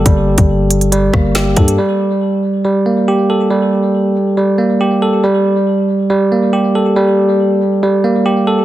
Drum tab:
HH |x--x--xxx---x-xx|----------------|----------------|----------------|
SD |----------r-o---|----------------|----------------|----------------|
BD |o--o------o---o-|----------------|----------------|----------------|

HH |----------------|
SD |----------------|
BD |----------------|